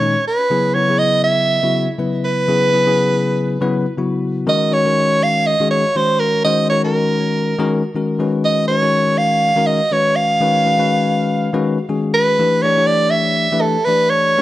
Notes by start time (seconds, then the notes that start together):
Already playing: C#5
0.01 A#2 D#3 G#3 C#4 D#4
0.15 C#4 G#4
0.27 B4
0.39 C#4 F4
0.50 C#3 F#3 B3 E4 G#4
0.74 C#3 F#3 B3 E4 B4 C#5
0.89 C#3 F#3 B3 E4 G#4
0.98 D#5
1.24 E5
1.63 C#3 F#3 B3 E4 F#4
1.87 E4 G#4
1.98 C#3 F#3 B3 E4 B4
2.25 B4
2.48 C#3 F#3 B3 E4 G#4
2.73 C#3 F#3 B3 E4 G#4
2.86 C#3 F#3 B3 E4 G#4
3.61 C#3 F#3 B3 E4 B4
3.86 E4 F#4
3.98 C#3 F#3 B3 E4 F#4
4.47 D#3 G#3 C#4 F#4 A#4 D#5
4.71 D#3 G#3 C#4 F#4 C#5
4.85 D#3 G#3 C#4 F#4 A#4
5.23 F5
5.46 D#5
5.60 D#3 G#3 C#4 F#4 G#4
5.71 C#5
5.85 F#4 A#4
5.95 D#3 G#3 C#4 F#4 C5 C#5
6.20 A#4
6.45 D#3 G#3 C#4 F#4 C5 D#5
6.70 D#3 G#3 C#4 F#4 A#4 C#5
6.84 D#3 G#3 C#4 F#4 A#4
7.58 D#3 G#3 C#4 F#4 A#4
7.84 F#4 A#4
7.95 D#3 G#3 C#4 F#4 A#4
8.19 D#3 G#3 C#4 F#4 B4
8.45 D#5
8.68 D#3 G#3 C#4 F#4 B4 C#5
8.82 D#3 G#3 C#4 F#4 A#4
9.18 F5
9.56 D#3 G#3 C#4 F#4 A#4
9.66 D#5
9.91 D#3 G#3 C#4 F#4 B4 C#5
10.16 F5
10.41 D#3 G#3 C#4 F#4 B4
10.66 D#3 G#3 C#4 F#4 B4
10.78 D#3 G#3 C#4 F#4 B4
11.53 D#3 G#3 C#4 F#4 B4
11.79 F#4 G#4
11.89 D#3 G#3 C#4 F#4 G#4
12.14 B4
12.39 E3 A3 D4 G4 B4
12.62 E3 A3 D4 G4 C#5 D5
12.77 E3 A3 D4 G4 C#5
12.87 D5
13.10 E5
13.52 E3 A3 D4 G4 B4
13.61 A4
13.76 G4 C#5
13.85 E3 A3 D4 G4 B4 D5
14.10 C#5
14.37 G#3 C#4 D4 F#4